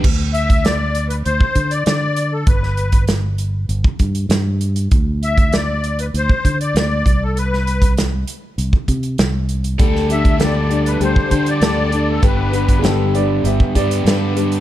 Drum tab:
CC |x---------------|----------------|----------------|----------------|
HH |--xxx-xxx-xxx-x-|x-xxx-x-x-xxx-xx|x-xxx-xxx-xxx-x-|x-xxx-x-x-xxx-xx|
SD |----o-------o---|-o--o-------o---|----o-------o---|-o--o-------o---|
BD |o--o-----oo-----|o--o-----oo-----|o--o-----oo---o-|---o-----oo-----|

CC |----------------|----------------|
HH |x-xxx-xxx-xxx-x-|x-xxx-x-x-xxx-xx|
SD |-o--o-------o---|----o-------o---|
BD |o--o-----oo-----|o--o-----oo-----|